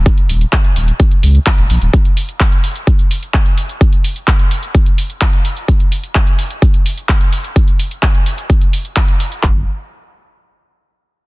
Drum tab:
HH |xxoxxxoxxxoxxxox|xxoxxxoxxxoxxxox|xxoxxxoxxxoxxxox|xxoxxxoxxxoxxxox|
CP |----x-------x---|----x-------x---|----x-------x---|----x-------x---|
BD |o---o---o---o---|o---o---o---o---|o---o---o---o---|o---o---o---o---|

HH |xxoxxxoxxxoxxxox|----------------|
CP |----x-------x---|x---------------|
BD |o---o---o---o---|o---------------|